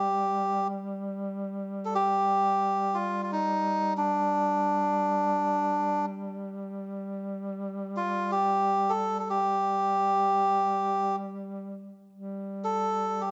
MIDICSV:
0, 0, Header, 1, 3, 480
1, 0, Start_track
1, 0, Tempo, 500000
1, 12778, End_track
2, 0, Start_track
2, 0, Title_t, "Melodica"
2, 0, Program_c, 0, 22
2, 0, Note_on_c, 0, 67, 62
2, 648, Note_off_c, 0, 67, 0
2, 1776, Note_on_c, 0, 69, 53
2, 1860, Note_off_c, 0, 69, 0
2, 1871, Note_on_c, 0, 67, 76
2, 2825, Note_on_c, 0, 65, 65
2, 2852, Note_off_c, 0, 67, 0
2, 3087, Note_off_c, 0, 65, 0
2, 3101, Note_on_c, 0, 65, 49
2, 3178, Note_off_c, 0, 65, 0
2, 3190, Note_on_c, 0, 63, 72
2, 3778, Note_off_c, 0, 63, 0
2, 3815, Note_on_c, 0, 62, 66
2, 5814, Note_off_c, 0, 62, 0
2, 7647, Note_on_c, 0, 65, 63
2, 7978, Note_off_c, 0, 65, 0
2, 7982, Note_on_c, 0, 67, 73
2, 8541, Note_on_c, 0, 69, 75
2, 8563, Note_off_c, 0, 67, 0
2, 8812, Note_off_c, 0, 69, 0
2, 8826, Note_on_c, 0, 69, 44
2, 8913, Note_off_c, 0, 69, 0
2, 8925, Note_on_c, 0, 67, 73
2, 10713, Note_off_c, 0, 67, 0
2, 12137, Note_on_c, 0, 69, 76
2, 12680, Note_on_c, 0, 67, 62
2, 12691, Note_off_c, 0, 69, 0
2, 12778, Note_off_c, 0, 67, 0
2, 12778, End_track
3, 0, Start_track
3, 0, Title_t, "Duduk"
3, 0, Program_c, 1, 69
3, 0, Note_on_c, 1, 55, 37
3, 11483, Note_off_c, 1, 55, 0
3, 11646, Note_on_c, 1, 55, 41
3, 12778, Note_off_c, 1, 55, 0
3, 12778, End_track
0, 0, End_of_file